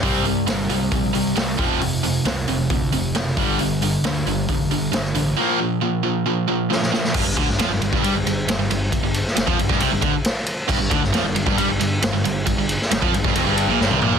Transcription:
<<
  \new Staff \with { instrumentName = "Distorted electric guitar" } { \clef bass \time 4/4 \key bes \major \tempo 4 = 135 <c g c'>8 <c g>8 <c g>8 <c g>8 <c g>8 <c g>8 <c g>8 <f, c f>8 | <f, c>8 <f, c>8 <f, c>8 <f, c>8 <f, c>8 <f, c>8 <f, c>8 <g, d g>8 | <g, d>8 <g, d>8 <g, d>8 <g, d>8 <g, d>8 <g, d>8 <g, d>8 <g, d>8 | <bes, f bes>8 <bes, f>8 <bes, f>8 <bes, f>8 <bes, f>8 <bes, f>8 <bes, f>8 <bes, f>8 |
\key g \minor g,16 g,16 d16 g,16 f16 g,16 g,16 g,16 g16 g,16 g,8 g,16 g,16 g,8 | g,16 g,8 r16 g,16 f16 g,16 g,16 c16 g,16 d16 r4 r16 | g,16 g,16 d16 g,16 f16 g,16 g,16 g,16 g16 g,16 g,8 g,16 g,16 g,8 | g,16 g,8 r16 g,16 f16 g,16 g,16 f,16 g,8 bes,16 g,16 c16 bes,8 | }
  \new Staff \with { instrumentName = "Overdriven electric guitar" } { \clef bass \time 4/4 \key bes \major <c g c'>8 <c g>8 <c g>8 <c g>8 <c g>8 <c g>8 <c g>8 <f, c f>8 | <f, c>8 <f, c>8 <f, c>8 <f, c>8 <f, c>8 <f, c>8 <f, c>8 <g, d g>8 | <g, d>8 <g, d>8 <g, d>8 <g, d>8 <g, d>8 <g, d>8 <g, d>8 <g, d>8 | <bes, f bes>8 <bes, f>8 <bes, f>8 <bes, f>8 <bes, f>8 <bes, f>8 <bes, f>8 <bes, f>8 |
\key g \minor g,16 g,16 d16 g,16 f16 g,16 g,16 g,16 g16 g,16 g,8 g,16 g,16 g,8 | g,16 g,8 r16 g,16 f16 g,16 g,16 c16 g,16 d16 r4 r16 | g,16 g,16 d16 g,16 f16 g,16 g,16 g,16 g16 g,16 g,8 g,16 g,16 g,8 | g,16 g,8 r16 g,16 f16 g,16 g,16 f,16 g,8 bes,16 g,16 c16 bes,8 | }
  \new Staff \with { instrumentName = "Picked electric bass" } { \clef bass \time 4/4 \key bes \major c,4 g,,8 c,8 bes,,8 c,8 c,8 f,,8 | f,,4 c,8 f,,8 d,8 f,,8 fis,,8 g,,8 | g,,4 d,8 g,,8 f,,8 g,,8 g,,8 a,,8 | r1 |
\key g \minor g,,16 g,,16 d,16 g,,16 f,16 g,,16 g,,16 g,,16 g,16 g,,16 g,,8 g,,16 g,,16 g,,8 | g,,16 g,,8 r16 g,,16 f,16 g,,16 g,,16 c,16 g,,16 d,16 r4 r16 | g,,16 g,,16 d,16 g,,16 f,16 g,,16 g,,16 g,,16 g,16 g,,16 g,,8 g,,16 g,,16 g,,8 | g,,16 g,,8 r16 g,,16 f,16 g,,16 g,,16 f,,16 g,,8 bes,,16 g,,16 c,16 bes,,8 | }
  \new DrumStaff \with { instrumentName = "Drums" } \drummode { \time 4/4 <hho bd>8 hho8 <hho sn>8 hho8 <hho bd>8 hho8 <hho sn>8 <hho bd>8 | hho8 hho8 <hho sn>8 hho8 <hho bd>8 hho8 <hho sn>16 sn16 <hho bd>8 | hho8 hho8 <hho sn>8 hho8 <hho bd>8 hho8 <hho sn>16 sn16 hho8 | r4 r4 r4 sn16 sn16 sn16 sn16 |
<cymc bd>8 <bd cymr>16 sn16 <cymr sn>8 cymr16 <bd sn>16 cymr8 cymr8 <cymr sn>8 cymr8 | <bd cymr>8 cymr16 sn16 <cymr sn>16 bd16 cymr16 <bd sn>16 cymr8 <bd cymr>8 <cymr sn>8 cymr8 | <cymc bd>8 <bd cymr>16 sn16 <cymr sn>8 cymr16 <bd sn>16 cymr8 cymr8 <cymr sn>8 cymr8 | <bd cymr>8 cymr16 sn16 <cymr sn>16 bd16 cymr16 <bd sn>16 cymr8 cymr8 sn16 tommh16 toml16 tomfh16 | }
>>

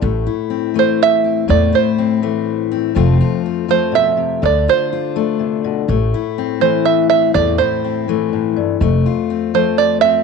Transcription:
<<
  \new Staff \with { instrumentName = "Five-string banjo" } { \time 3/4 \key a \minor \tempo 4 = 123 r4. c''8 e''4 | d''8 c''2 r8 | r4. c''8 e''4 | d''8 c''2 r8 |
r4. c''8 e''8 e''8 | d''8 c''2 r8 | r4. c''8 d''8 e''8 | }
  \new Staff \with { instrumentName = "Steel-string acoustic guitar" } { \time 3/4 \key a \minor << { a8 e'8 c'8 a4 c'8 | a8 e'8 c'8 a4 c'8 | <f a c' f'>8 f'8 c'8 a4. | d'8 f'8 f'8 d'4. |
a8 e'8 c'8 a4 c'8 | a8 e'8 c'8 a4. | a8 f'8 c'8 a4 c'8 | } \\ { a,4. e4. | a,4. e4. | f,4. f8 b,8 c8 | d4. a8 c8 b,8 |
a,4. e4. | a,4. e8 a,8 g,8 | f,4. f4. | } >> }
  \new Staff \with { instrumentName = "Upright bass" } { \clef bass \time 3/4 \key a \minor a,,8 r2 r8 | e,8 r2 r8 | f,,8 r2 r8 | d,8 r2 r8 |
a,,8 r2 r8 | e,8 r2 r8 | f,,8 r2 r8 | }
>>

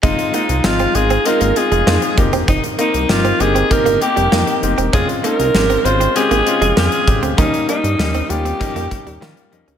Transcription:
<<
  \new Staff \with { instrumentName = "Alto saxophone" } { \time 4/4 \key f \minor \tempo 4 = 98 ees'8 ees'8 f'8 aes'8 bes'8 aes'4 r8 | ees'8 ees'8 f'8 aes'8 bes'8 g'4 r8 | aes'8 bes'4 c''8 aes'4 aes'8. r16 | ees'8 ees'4 g'2 r8 | }
  \new Staff \with { instrumentName = "Grand piano" } { \time 4/4 \key f \minor <aes c' ees' f'>8 <aes c' ees' f'>8 <aes c' ees' f'>8 <aes c' ees' f'>8 <aes c' ees' f'>8 <aes c' ees' f'>8 <aes c' ees' f'>8 <bes c' ees' g'>8~ | <bes c' ees' g'>8 <bes c' ees' bes'>8 <bes c' ees' g'>8 <bes c' ees' g'>8 <bes c' ees' g'>8 <bes c' ees' g'>8 <bes c' ees' g'>8 <bes c' ees' g'>8 | <aes c' des' f'>8 <aes c' des' ees'>8 <aes c' des' g'>8 <aes c' des' f'>8 <aes c' des' g'>8 <aes c' des' f'>8 <aes c' des' f'>8 <aes c' des' g'>8 | <g bes des' ees'>8 <g bes des' ees'>8 <g bes des' ees'>8 <g bes des' f'>8 <g bes des' ees'>8 <g bes des' ees'>8 <g bes des' f'>8 <g bes des' ees'>8 | }
  \new Staff \with { instrumentName = "Clean electric guitar" } { \time 4/4 \key f \minor aes16 r16 bes16 r8 c'16 r16 c'16 r16 bes16 r16 aes16 bes16 r8 c'16 | c'16 r16 bes16 r8 c'16 r16 c'16 r16 bes16 r16 g16 bes16 r8 c'16 | des'16 r16 bes16 r8 c'16 r16 c'16 r16 bes16 r16 aes16 bes16 r8 c'16 | ees'16 r16 bes16 r8 c'16 r16 c'16 r16 bes16 r16 g16 bes16 r8 des'16 | }
  \new Staff \with { instrumentName = "Analog synth bass" } { \clef bass \time 4/4 \key f \minor f,,16 r8 c,16 aes,,8 aes,,8 r16 aes,,16 r16 f,,16 f,16 r16 f,,16 e,,16 | f,,16 r8 c,16 g,,8 g,,8 r16 g,,16 r16 f,,16 f,16 r16 f,,16 e,,16 | f,,16 r8 c,16 aes,,8 aes,,8 r16 aes,,16 r16 f,,16 f,16 r16 aes,,16 d,16 | ees,16 r8 g,16 ees,8 ees,8 r16 f,16 r16 ees,16 ees16 r16 f,16 d,16 | }
  \new DrumStaff \with { instrumentName = "Drums" } \drummode { \time 4/4 <hh bd>16 hh16 hh16 hh16 sn16 hh16 hh16 hh16 hh16 hh16 hh16 hh16 sn16 hh16 <hh bd>16 hh16 | <hh bd>16 hh16 hh16 hh16 sn16 hh16 hh16 hh16 <hh bd>16 hh16 hh16 hh16 sn16 hh16 hh16 hh16 | <hh bd>16 hh16 hh16 hh16 sn16 hh16 hh16 hh16 hh16 hh16 hh16 hh16 sn16 hh16 <hh bd>16 hh16 | <hh bd>16 hh16 hh16 hh16 sn16 hh16 hh16 hh16 <hh bd>16 hh16 <hh bd>16 hh16 sn16 hh16 hh16 hh16 | }
>>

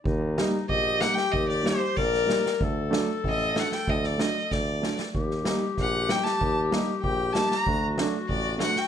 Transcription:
<<
  \new Staff \with { instrumentName = "Violin" } { \time 2/4 \tempo 4 = 95 r4 ees''8 fis''16 g''16 | ees''16 d''16 c''8 d''8. r16 | r4 ees''8 fis''16 g''16 | ees''16 d''16 ees''8 d''8. r16 |
r4 fis''8 g''16 a''16~ | a''16 r8. g''8 a''16 bes''16~ | bes''16 r8. d''8 fis''16 g''16 | }
  \new Staff \with { instrumentName = "Clarinet" } { \time 2/4 ees'4 g'4~ | g'4 bes'4 | a'2~ | a'4. r8 |
g'2~ | g'4 g'4 | fis'2 | }
  \new Staff \with { instrumentName = "Upright piano" } { \time 2/4 r8 <g bes ees'>16 r8. <g bes ees'>16 r16 | r8 <g bes ees'>16 r8. <g bes ees'>16 r16 | r8 <fis a d'>16 r8. <fis a d'>16 r16 | r8 <fis a d'>16 r8. <fis a d'>16 r16 |
r8 <g bes ees'>16 r8. <g bes ees'>16 r16 | r8 <g bes ees'>16 r8. <g bes ees'>16 r16 | r8 <fis a d'>16 r8. <fis a d'>16 r16 | }
  \new Staff \with { instrumentName = "Tuba" } { \clef bass \time 2/4 ees,4 bes,,4 | ees,4 bes,,4 | d,4 a,,4 | d,4 d,4 |
ees,4 bes,,4 | ees,4 bes,,4 | d,4 a,,4 | }
  \new DrumStaff \with { instrumentName = "Drums" } \drummode { \time 2/4 bd8 sn8 bd8 sn16 sn16 | bd8 sn8 bd16 sn16 sn16 sn16 | bd8 sn8 bd8 sn16 sn16 | bd16 sn16 sn8 <bd sn>8 sn16 sn16 |
bd16 sn16 sn8 <bd sn>8 sn16 sn16 | bd8 sn8 bd8 sn16 sn16 | bd8 sn8 bd8 sn16 sn16 | }
>>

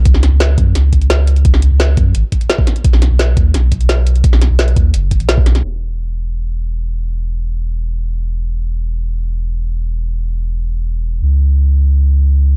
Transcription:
<<
  \new Staff \with { instrumentName = "Sub bass" } { \clef bass \time 4/4 \key cis \minor \tempo 4 = 172 cis,8. cis,8. fis,8 cis,2 | cis,8. cis,8. fis,8 gis,,16 r4. r16 | b,,8. b,,8. dis,8 b,,2 | b,,8. b,,8. dis,8 fis,,8. b,,4~ b,,16 |
e,,1~ | e,,1~ | e,,1~ | e,,1 |
cis,1 | }
  \new DrumStaff \with { instrumentName = "Drums" } \drummode { \time 4/4 <hh bd>16 sn16 <hh sn>8 <hh sn>8 <hh bd>8 <hh sn>8 <hh bd>16 hh16 <hh sn>8 hh16 hh16 | <hh bd>16 sn16 hh8 <hh sn>8 <hh bd>8 hh8 <hh bd>16 hh16 <hh sn>16 bd16 <hh sn>16 hh16 | <hh bd>16 sn16 <hh sn>8 <hh sn>8 <hh bd>8 <hh sn>8 <hh bd>16 hh16 <hh sn>8 hh16 hh16 | <hh bd>16 sn16 <hh sn>8 <hh sn>16 hh16 <hh bd>8 hh8 <hh bd>16 hh16 <hh sn>16 bd16 <hh sn>16 <hh sn>16 |
r4 r4 r4 r4 | r4 r4 r4 r4 | r4 r4 r4 r4 | r4 r4 r4 r4 |
r4 r4 r4 r4 | }
>>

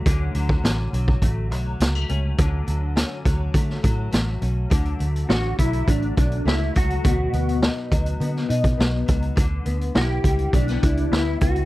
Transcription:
<<
  \new Staff \with { instrumentName = "Clean electric guitar" } { \time 4/4 \key d \major \tempo 4 = 103 r1 | r1 | r4 fis'8 e'8 d'8 d'8 e'8 fis'8~ | fis'4 r2. |
r4 g'4 d'4 e'8 fis'8 | }
  \new Staff \with { instrumentName = "Nylon-string guitar" } { \time 4/4 \key d \major <d cis'>8 fis8 cis'8 fis8 a8 fis8 g16 a16 cis'8 | <d cis'>8 fis8 cis'8 fis8 a8 fis8 a8 cis'8 | d8 a8 cis'8 fis8 a8 cis'8 a8 fis8 | b,8 b8 dis'8 fis8 b8 dis'8 b8 fis8 |
d8 b8 e'8 g8 a16 b16 e'8 b8 g8 | }
  \new Staff \with { instrumentName = "Fingered electric bass" } { \clef bass \time 4/4 \key d \major d,8 d,8 a,,8 b,,8 a,,8 b,,8 cis,8 cis,8 | d,8 d,8. r16 d,8 d8 a,8 a,,8 b,,8 | d,8 d,8 a,,8 b,,8 a,,8 b,,8 cis,8 cis,8 | d,8 d,8. r16 d,8 d8 b,8 b,,8 cis,8 |
d,8 d,8 b,,8 cis,8 b,,8 cis,8 d,8 cis,8 | }
  \new DrumStaff \with { instrumentName = "Drums" } \drummode { \time 4/4 <hh bd>8 hh16 bd16 <hh sn>8 hh16 bd16 <hh bd>8 hh8 <hh sn>8 hh8 | <hh bd>8 hh8 <hh sn>8 <hh bd>8 <hh bd>16 sn16 <hh bd>8 <hh sn>8 hh8 | <hh bd>16 hh16 hh16 hh16 sn8 <hh bd>16 hh16 <hh bd>16 hh16 <hh bd>16 hh16 sn8 <hh bd>16 hh16 | <hh bd>8 hh16 hh16 sn8 <hh bd>16 hh16 hh16 sn16 hh16 <hh bd>16 sn8 <hh bd>16 hh16 |
<hh bd>8 hh16 hh16 sn8 <hh bd>16 hh16 <hh bd>16 <hh sn>16 <hh bd>16 hh16 sn8 <hh bd>16 hh16 | }
>>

